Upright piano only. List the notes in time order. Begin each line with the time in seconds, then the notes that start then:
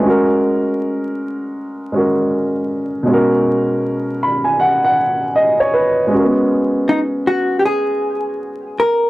0.00 G#3 C#4
0.06 F#4 A#4
1.92 G#3 C#4 F#4
1.97 A#4
3.03 B2 G#3
3.08 C#4 F#4
3.13 A#4
4.23 B5
4.44 G#5
4.60 F#5
4.84 F#5
5.36 D#5
5.60 C#5
5.74 B4
6.07 G#3 C#4
6.14 F#4 A#4
6.24 B3